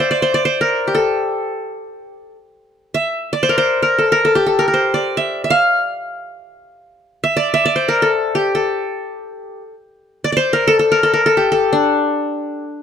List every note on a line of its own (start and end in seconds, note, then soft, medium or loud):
0.00 0.22 C5 medium
0.00 0.10 D5 medium
0.00 0.61 E5 medium
0.00 0.14 G5 medium
0.11 0.34 D5 medium
0.22 0.45 C5 medium
0.34 1.33 D5 medium
0.45 1.51 C5 medium
0.61 1.01 A#4 medium
0.87 2.13 G4 soft
0.95 2.35 A4 medium
2.94 3.86 E5 medium
3.33 4.31 D5 medium
3.43 3.57 C5 medium
3.49 3.82 A#4 medium
3.58 4.63 C5 medium
3.82 4.04 A#4 medium
3.98 4.18 A4 medium
4.12 4.31 A#4 medium
4.25 4.46 A4 medium
4.35 5.61 G4 medium
4.46 4.65 A4 medium
4.59 4.67 A#4 medium
4.68 5.81 A#4 medium
4.74 5.79 C5 medium
4.94 5.92 D5 medium
5.17 5.44 E5 medium
5.44 5.56 E5 medium
5.50 6.75 F5 medium
7.24 7.53 E5 medium
7.37 7.65 D5 medium
7.54 8.45 E5 medium
7.65 8.64 D5 medium
7.76 8.81 C5 medium
7.88 8.08 A#4 medium
8.02 8.54 A4 medium
8.35 9.61 G4 medium
8.55 9.72 A4 medium
10.24 10.32 D5 medium
10.32 11.31 D5 medium
10.37 11.42 C5 medium
10.53 10.73 A#4 medium
10.67 10.79 A4 medium
10.79 10.98 A4 medium
10.92 11.09 A#4 medium
11.03 11.20 A4 medium
11.13 11.32 A#4 medium
11.26 11.51 A4 medium
11.37 12.63 G4 medium
11.52 12.69 A4 medium
11.73 12.83 D4 medium